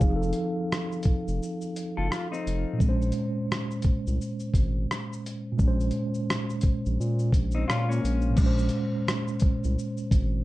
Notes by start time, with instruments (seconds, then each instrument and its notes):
Already playing: tine electric piano F3 F5
0.00 sub bass F1, tine electric piano C4 D#4, kick, shaker
0.09 tine electric piano G#4
0.16 tine electric piano A4
0.23 shaker
0.33 closed hi-hat, shaker
0.72 cross-stick, shaker
0.92 shaker
1.03 kick, closed hi-hat, shaker
1.28 sub bass F1, shaker
1.43 shaker
1.61 shaker
1.76 closed hi-hat, shaker
1.97 sub bass F#1, clean electric guitar F4 A4
2.11 clean electric guitar F4, cross-stick, shaker
2.32 clean electric guitar C4 D#4, shaker
2.47 sub bass F1, closed hi-hat, shaker
2.73 tine electric piano A#2
2.79 sub bass A#1, tine electric piano G#3, kick, shaker
2.84 tine electric piano C4
2.89 tine electric piano C#4 C5
3.02 shaker
3.12 closed hi-hat, shaker
3.52 cross-stick, shaker
3.71 shaker
3.82 kick, closed hi-hat, shaker
4.07 sub bass C2, shaker
4.22 shaker
4.40 shaker
4.54 sub bass G#1, kick, closed hi-hat, shaker
4.91 cross-stick, shaker
5.13 shaker
5.26 closed hi-hat, shaker
5.52 tine electric piano A#2
5.58 sub bass A#1, tine electric piano G#3, kick, shaker
5.63 tine electric piano C#4
5.68 tine electric piano C5
5.80 shaker
5.91 closed hi-hat, shaker
6.14 shaker
6.30 cross-stick, shaker
6.50 shaker
6.61 kick, closed hi-hat, shaker
6.86 sub bass A#1, shaker
7.00 sub bass A#2, shaker
7.19 shaker
7.32 sub bass A#1, kick, closed hi-hat, shaker
7.51 clean electric guitar C4 D#4, shaker
7.68 sub bass A#2, clean electric guitar C#4 F4, cross-stick, shaker
7.89 clean electric guitar A#3 C#4, shaker
8.04 sub bass A#1, closed hi-hat, shaker
8.22 shaker
8.30 tine electric piano A#2
8.35 sub bass A#1, tine electric piano G#3, kick, crash, shaker
8.40 tine electric piano C#4
8.46 tine electric piano C5
8.59 shaker
8.69 closed hi-hat, shaker
9.08 cross-stick, shaker
9.28 shaker
9.40 kick, closed hi-hat, shaker
9.64 sub bass C2, shaker
9.79 shaker
9.97 shaker
10.11 sub bass G#1, kick, closed hi-hat, shaker